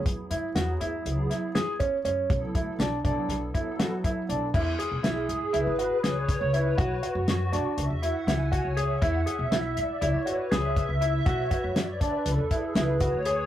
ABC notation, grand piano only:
X:1
M:9/8
L:1/8
Q:3/8=80
K:Emix
V:1 name="Grand piano"
z E F E2 E G C C- | C E D D2 E F E D | E G E2 E F G2 E | F F2 D2 E E F G |
E G E2 E F G2 E | F F2 D2 E E F G |]